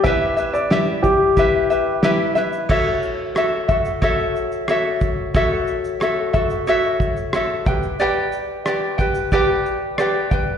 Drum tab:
CC |----------------|x---------------|----------------|----------------|
SH |x-xxx-x-x-x-x-xx|--x-x-xxx-xxx-x-|x-xxx-xxx-xxx-xx|x-x-x-xxx-x-x-x-|
SD |----o-------o-o-|----r-------r---|----r-------r-r-|----r-------r-r-|
BD |o-----o-o-------|o-----o-o-----o-|o-----o---o---o-|------o-o-----o-|